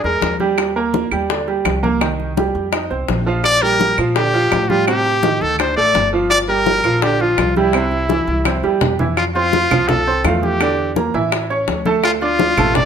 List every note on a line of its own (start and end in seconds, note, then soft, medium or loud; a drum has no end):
0.04 0.21 E2 medium
0.04 0.34 G#3 medium
0.04 0.34 G#4 medium
0.04 0.37 A#4 medium
0.04 high bongo soft
0.04 high conga soft
0.22 1.06 D#2 medium
0.22 high bongo medium
0.22 low bongo medium
0.22 high conga medium
0.40 0.69 G3 medium
0.40 0.69 G4 medium
0.40 high conga medium
0.58 high bongo medium
0.58 high conga soft
0.58 claves medium
0.76 1.05 A#3 medium
0.76 1.05 A#4 medium
0.76 high conga soft
0.94 high bongo medium
0.94 high conga medium
1.12 1.62 D#2 medium
1.12 1.26 G3 medium
1.12 1.26 G4 medium
1.12 high bongo soft
1.12 high conga soft
1.12 claves medium
1.30 1.44 D3 medium
1.30 1.45 D4 medium
1.30 high bongo medium
1.30 high conga soft
1.48 1.77 G3 medium
1.48 1.77 G4 medium
1.48 high bongo soft
1.48 high conga soft
1.65 2.49 C2 medium
1.65 high bongo medium
1.65 low bongo medium
1.65 high conga medium
1.65 claves medium
1.83 1.98 A#3 medium
1.83 1.98 A#4 medium
1.83 high bongo soft
1.83 high conga medium
2.01 2.30 D#3 medium
2.01 2.31 D#4 medium
2.01 high bongo medium
2.01 high conga soft
2.01 claves medium
2.20 high bongo soft
2.20 high conga soft
2.37 2.66 G3 medium
2.37 2.67 G4 medium
2.37 high bongo medium
2.37 high conga medium
2.55 2.88 F2 medium
2.55 high bongo soft
2.55 high conga soft
2.73 2.87 D#4 medium
2.73 2.88 D#5 medium
2.73 high bongo medium
2.73 high conga soft
2.73 claves medium
2.90 3.07 C2 medium
2.90 3.20 C4 medium
2.90 3.20 C5 medium
2.90 high bongo soft
2.90 high conga soft
3.08 3.92 A#1 medium
3.08 high bongo medium
3.08 low bongo medium
3.08 high conga medium
3.26 3.56 F3 medium
3.26 3.56 F4 medium
3.44 3.63 D5 loud
3.44 high bongo medium
3.44 high conga soft
3.44 claves medium
3.62 3.92 G3 medium
3.62 3.92 G4 medium
3.62 3.98 A#4 loud
3.62 high conga soft
3.80 high bongo medium
3.80 high conga medium
3.98 4.48 A#2 medium
3.98 4.13 F3 medium
3.98 4.13 F4 medium
3.98 high bongo soft
3.98 high conga soft
3.98 claves medium
4.16 4.31 D3 medium
4.16 4.31 D4 medium
4.16 4.70 G4 medium
4.16 high bongo medium
4.16 high conga soft
4.34 4.63 F3 medium
4.34 4.63 F4 medium
4.34 high bongo soft
4.34 high conga soft
4.52 5.36 A2 medium
4.52 high bongo medium
4.52 low bongo medium
4.52 high conga medium
4.52 claves medium
4.69 4.84 G3 medium
4.69 4.87 F4 medium
4.69 4.85 G4 medium
4.69 high bongo soft
4.69 high conga medium
4.87 5.17 C3 medium
4.87 5.17 C4 medium
4.87 5.43 G4 loud
4.87 high bongo medium
4.87 high conga soft
4.87 claves medium
5.05 high bongo soft
5.05 high conga soft
5.23 5.53 D#3 medium
5.23 5.53 D#4 medium
5.23 high bongo medium
5.23 high conga loud
5.41 5.74 D2 medium
5.41 5.58 A4 loud
5.41 high bongo soft
5.41 high conga soft
5.59 5.74 D4 medium
5.59 5.76 C5 medium
5.59 5.74 D5 medium
5.59 high bongo medium
5.59 high conga soft
5.59 claves medium
5.77 5.94 A1 medium
5.77 6.07 A3 medium
5.77 6.07 A4 medium
5.77 6.10 D5 loud
5.77 high bongo soft
5.77 high conga soft
5.94 6.79 G1 medium
5.94 high bongo medium
5.94 low bongo medium
5.94 high conga medium
6.13 6.42 F3 medium
6.13 6.42 F4 medium
6.30 6.38 D5 loud
6.30 high bongo medium
6.30 high conga soft
6.30 claves medium
6.48 6.78 G3 medium
6.48 6.78 G4 medium
6.48 7.04 A#4 loud
6.48 high conga soft
6.66 high bongo medium
6.66 high conga medium
6.84 7.34 A#1 medium
6.84 6.99 F3 medium
6.84 6.99 F4 medium
6.84 high bongo soft
6.84 high conga soft
6.84 claves medium
7.02 7.17 D3 medium
7.02 7.17 D4 medium
7.02 7.23 G4 medium
7.02 high bongo medium
7.02 high conga soft
7.20 7.50 F3 medium
7.20 7.56 F4 medium
7.20 7.50 F4 medium
7.20 high bongo soft
7.20 high conga soft
7.38 8.22 C2 medium
7.38 high bongo medium
7.38 low bongo medium
7.38 high conga medium
7.38 claves medium
7.56 7.71 G3 medium
7.56 8.78 E4 medium
7.56 7.71 G4 medium
7.56 high bongo soft
7.56 high conga medium
7.73 8.04 C3 medium
7.73 8.04 C4 medium
7.73 high bongo medium
7.73 high conga soft
7.73 claves medium
7.91 high bongo soft
7.91 high conga soft
8.09 8.39 E3 medium
8.09 8.40 E4 medium
8.09 high bongo medium
8.09 high conga medium
8.27 8.61 C2 medium
8.27 high bongo soft
8.27 high conga soft
8.45 8.61 C4 medium
8.45 8.61 C5 medium
8.45 high bongo medium
8.45 high conga medium
8.45 claves medium
8.63 8.80 E2 medium
8.63 8.93 G3 medium
8.63 8.93 G4 medium
8.63 high bongo soft
8.81 9.65 F2 medium
8.81 high bongo medium
8.81 low bongo medium
8.81 low conga medium
8.99 9.14 E3 medium
8.99 9.14 E4 medium
8.99 low conga medium
9.17 9.25 F4 medium
9.17 high bongo medium
9.17 high conga soft
9.17 claves medium
9.35 9.65 C4 medium
9.35 9.90 F4 loud
9.35 9.65 C5 medium
9.35 9.65 C6 medium
9.35 high bongo soft
9.35 high conga soft
9.53 high bongo medium
9.53 high conga medium
9.71 10.21 C2 medium
9.71 10.01 F3 medium
9.71 10.01 F4 medium
9.71 10.01 F5 medium
9.71 high conga soft
9.71 low conga medium
9.71 claves medium
9.88 10.24 A4 medium
9.88 high bongo medium
9.88 high conga soft
9.88 low conga medium
10.07 10.22 C4 medium
10.07 10.22 C5 medium
10.07 10.22 C6 medium
10.07 high bongo soft
10.07 high conga soft
10.24 11.08 E2 loud
10.24 10.54 A3 medium
10.24 10.54 F4 medium
10.24 10.55 F5 medium
10.24 high bongo medium
10.24 low bongo medium
10.24 high conga medium
10.24 claves medium
10.43 10.93 G4 medium
10.43 high bongo soft
10.43 high conga medium
10.61 10.90 D3 medium
10.61 10.90 D4 medium
10.61 10.90 D5 medium
10.61 high bongo medium
10.61 high conga soft
10.61 claves medium
10.79 high conga soft
10.96 11.11 A#3 medium
10.96 11.11 A#4 medium
10.96 11.11 A#5 medium
10.96 high bongo medium
10.96 high conga loud
11.14 11.64 A1 medium
11.14 11.44 E3 medium
11.14 11.44 E4 medium
11.14 11.44 E5 medium
11.14 high bongo soft
11.14 high conga soft
11.32 high bongo medium
11.32 high conga soft
11.32 claves medium
11.50 11.79 C#4 medium
11.50 11.80 C#5 medium
11.50 11.80 C#6 medium
11.50 high bongo soft
11.50 high conga soft
11.68 12.52 D2 medium
11.68 high bongo medium
11.68 low bongo medium
11.68 high conga medium
11.86 12.15 A3 medium
11.86 12.15 A4 medium
11.86 12.16 A5 medium
11.86 high bongo soft
11.86 high conga medium
12.04 12.12 F4 medium
12.04 high bongo medium
12.04 high conga soft
12.04 claves medium
12.21 12.51 D4 medium
12.21 12.77 F4 medium
12.21 12.51 D5 medium
12.21 12.52 D6 medium
12.21 high bongo soft
12.21 high conga soft
12.39 high bongo medium
12.39 high conga loud
12.57 12.85 A1 loud
12.57 12.85 A3 medium
12.57 12.85 A4 medium
12.57 12.85 A5 medium
12.57 high conga soft
12.57 low conga medium
12.57 claves medium
12.75 12.85 D5 loud
12.75 high bongo medium
12.75 high conga soft
12.75 low conga medium